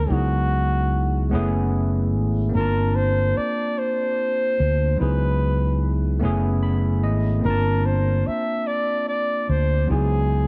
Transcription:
0.00 0.13 A#4 medium
0.07 1.34 C#2 medium
0.07 1.31 F#3 medium
0.07 1.30 B3 medium
0.07 1.32 D#4 soft
0.11 1.33 E4 soft
0.11 1.33 F#4 medium
0.11 1.33 G#4 medium
1.29 2.15 F#1 medium
1.29 1.37 G#3 medium
1.29 2.54 B3 medium
1.29 2.55 C#4 medium
1.34 2.56 A3 medium
1.34 2.55 E4 medium
1.34 2.56 G#4 medium
2.15 2.51 G#1 medium
2.49 4.93 A#3 medium
2.49 4.94 C4 medium
2.55 3.32 G1 medium
2.55 4.95 D4 medium
2.55 4.97 F4 medium
2.55 2.97 A#4 medium
2.60 4.98 A5 medium
2.96 3.39 C5 medium
3.37 3.80 D5 medium
3.37 muted fretless electric bass stroke soft
3.78 5.00 C5 medium
4.60 4.96 D2 medium
4.97 6.20 F#3 medium
4.97 6.19 B3 soft
4.97 6.22 D#4 medium
4.97 5.88 B4 medium
5.01 6.24 C#2 medium
5.01 6.22 E4 soft
5.01 6.23 G#4 medium
6.19 7.04 F#1 medium
6.19 7.43 A3 medium
6.19 7.43 B3 medium
6.19 7.44 C#4 medium
6.19 7.45 E4 medium
6.25 7.46 G#4 medium
6.63 7.00 B5 medium
7.03 7.41 G#1 medium
7.03 7.41 D#5 medium
7.39 9.82 A#3 medium
7.39 9.84 C4 medium
7.45 8.22 G1 medium
7.45 9.85 D4 medium
7.45 9.87 F4 soft
7.45 7.87 A#4 medium
7.50 9.88 A5 medium
7.86 8.29 C5 medium
8.27 8.69 E5 medium
8.27 muted fretless electric bass stroke soft
8.67 9.08 D5 medium
9.08 9.51 D5 medium
9.49 9.85 D2 medium
9.49 9.90 C5 medium
9.86 10.47 C#2 medium
9.86 10.47 F#3 medium
9.86 10.47 B3 medium
9.86 10.47 D#4 soft
9.91 10.47 E4 medium
9.91 10.47 G#4 medium

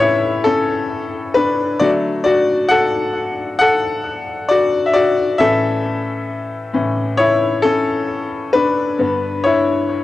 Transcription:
0.00 1.77 A2 medium
0.00 1.77 E3 medium
0.00 0.45 C#4 medium
0.00 1.84 E4 medium
0.00 1.83 G4 medium
0.00 0.44 A4 medium
0.00 1.83 C#5 loud
0.00 1.83 E5 loud
0.44 1.32 C#4 medium
0.44 1.38 A4 medium
1.34 1.78 D4 medium
1.34 1.82 B4 loud
1.79 5.36 D3 medium
1.79 5.36 F#3 medium
1.79 5.36 A3 medium
1.79 1.92 F#4 medium
1.79 1.90 D5 loud
2.24 2.68 F#4 medium
2.24 2.71 D5 loud
2.69 3.57 A4 medium
2.69 3.57 F#5 loud
3.59 4.47 A4 medium
3.59 4.45 F#5 loud
4.49 4.86 F#4 medium
4.49 4.89 D5 loud
4.86 4.94 E5 medium
4.94 5.37 F#4 medium
4.94 5.41 D5 loud
5.38 6.72 A2 medium
5.38 6.72 E3 medium
5.38 6.73 C#4 medium
5.38 7.16 A4 medium
5.38 7.24 E5 loud
6.73 7.15 A2 medium
6.73 7.15 E3 medium
6.73 7.15 C#4 medium
7.17 7.61 E4 medium
7.17 7.65 C#5 loud
7.62 8.51 C#4 medium
7.62 8.57 A4 loud
8.53 9.42 D4 medium
8.53 9.47 B4 loud
8.99 10.04 G2 medium
8.99 10.04 D3 medium
8.99 10.04 B3 medium
9.44 10.04 E4 medium
9.44 10.04 C#5 medium

